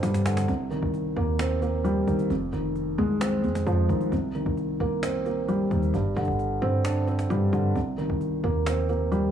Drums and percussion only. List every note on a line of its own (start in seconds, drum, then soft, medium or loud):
0.03 cajon slap medium
0.14 cajon slap medium
0.26 cajon slap loud
0.31 cajon slap soft
0.37 cajon slap loud
0.43 cajon slap soft
0.48 cajon slap soft
0.71 cajon slap soft
0.94 cajon slap soft
1.39 cajon slap loud
1.62 cajon slap soft
1.85 cajon slap soft
2.08 cajon slap soft
2.19 cajon slap soft
2.30 cajon slap soft
2.53 cajon slap soft
2.76 cajon slap soft
3.21 cajon slap loud
3.44 cajon slap soft
3.55 cajon slap medium
3.67 cajon slap soft
3.89 cajon slap soft
4.01 cajon slap soft
4.12 cajon slap soft
4.35 cajon slap soft
4.57 cajon slap soft
5.03 cajon slap loud
5.26 cajon slap soft
5.48 cajon slap soft
5.71 cajon slap soft
5.83 cajon slap soft
5.94 cajon slap soft
6.17 cajon slap soft
6.24 cajon slap soft
6.32 cajon slap soft
6.39 cajon slap soft
6.85 cajon slap loud
7.07 cajon slap soft
7.19 cajon slap medium
7.30 cajon slap soft
7.53 cajon slap soft
7.76 cajon slap soft
7.98 cajon slap soft
8.21 cajon slap soft
8.66 cajon slap loud
8.89 cajon slap soft
9.12 cajon slap soft